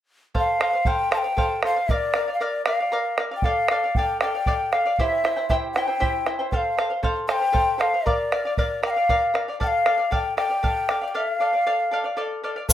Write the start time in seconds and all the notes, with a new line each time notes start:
0.35 A4 C5 F5, bombo low
0.39 F5
0.60 A4 C5 F5, bombo rim
0.73 C5 F5
0.85 A4 C5 F5 G5, bombo low
1.11 A4 C5 F5 A5, bombo rim
1.18 G5
1.24 C5 F5
1.37 A4 C5 F5, bombo low
1.63 A4 C5 F5, bombo rim
1.77 C5 F5
1.89 A#4 D5 F5, bombo low
1.93 D5
2.14 A#4 D5 F5, bombo rim
2.28 D5 F5
2.34 F5
2.40 A#4 D5 F5
2.65 A#4 D5 F5, bombo rim
2.80 D5 F5
2.92 A#4 D5 F5
3.18 A#4 D5 F5, bombo rim
3.31 D5 F5
3.36 G5
3.42 A4 D5 F5, bombo low
3.68 A4 D5 F5, bombo rim
3.84 D5 F5
3.95 A4 D5 F5 G5, bombo low
4.21 A4 D5 F5 G5, bombo rim
4.35 D5 F5
4.46 A4 D5 F5, bombo low
4.72 A4 D5 F5, bombo rim
4.85 D5 F5
4.96 E4 G4 C5 E5 F5, bombo low
5.00 G5
5.12 bombo rim
5.24 E4 C5 E5 G5, bombo rim
5.36 E4 C5 G5
5.49 E4 G4 C5 E5 G5, bombo rim, bombo low
5.74 E4 C5 E5 G5, bombo rim
5.87 E4 C5 G5, bombo rim
6.00 E4 G4 C5 E5 G5, bombo low
6.26 E4 C5 E5 G5, bombo rim
6.39 E4 C5 G5
6.51 A4 C5 F5 G5, bombo low
6.56 F5
6.77 A4 C5 F5, bombo rim
6.90 C5 F5
7.03 A4 C5 F5, bombo low
7.28 A4 C5 F5 G5 A5, bombo rim
7.41 C5 F5
7.53 A4 C5 F5, bombo low
7.78 A4 C5 F5, bombo rim
7.94 C5 F5
8.06 A#4 D5 F5, bombo low
8.32 A#4 D5 F5, bombo rim
8.45 D5 F5
8.57 A#4 D5 F5, bombo low
8.83 A#4 D5 F5 G5, bombo rim
8.90 F5
8.96 D5 F5
9.09 A#4 D5 F5, bombo low
9.34 A#4 D5 F5, bombo rim
9.48 D5 F5
9.60 A4 D5 F5 G5, bombo low
9.67 F5
9.86 A4 D5 F5, bombo rim
9.98 D5 F5
10.11 A4 D5 F5 G5, bombo low
10.37 A4 D5 F5 G5, bombo rim
10.50 D5 F5
10.63 A4 D5 F5, bombo low
10.89 A4 D5 F5, bombo rim
11.02 D5 F5
11.08 G5
11.14 A4 D5 E5 F5
11.32 F5
11.40 A4 D5 F5
11.53 D5 F5
11.66 A4 D5 F5
11.91 A4 D5 F5
12.04 D5 F5
12.17 A4 D5 F5
12.44 A4 D5 F5
12.56 D5 F5
12.69 A4 C5 F5, bombo low